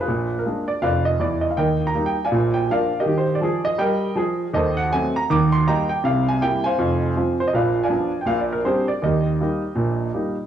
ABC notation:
X:1
M:4/4
L:1/16
Q:"Swing" 1/4=161
K:Eb
V:1 name="Grand piano"
[FA_c]3 B3 d2 [cdf]2 e2 d2 e f | [Beg]3 b2 g2 [dfa]3 g2 [Bdf]3 [GBe]- | [GBe] c2 d3 e2 [Beg]4 z4 | [=Ace]2 _g2 _a2 b2 d'2 c'2 [e=gb]2 g2 |
f2 a2 g2 [cfa]8 c e | [_cdf]3 [dfa]4 g (3f2 d2 B2 [GA=c]2 d2 | [GBe]12- [GBe]2 z2 |]
V:2 name="Grand piano" clef=bass
[B,,,B,,]4 [A,B,D]4 [F,,,F,,]4 [_F,,_F,]4 | [E,,E,]4 [G,B,E]4 [B,,,B,,]4 [F,B,D]4 | [E,G]4 [F,A]4 G,4 [F,A]4 | [E,,E,]4 [_G,=A,C]4 [E,,E,]4 [=G,B,E]4 |
[C,,C,]4 [G,B,=E]4 [F,,,F,,]4 [F,CF]4 | [B,,,B,,]4 [F,_CD]4 [B,,,B,,]4 [G,=CD]4 | [E,,E,]4 [G,B,E]4 [B,,,B,,]4 [G,B,E]4 |]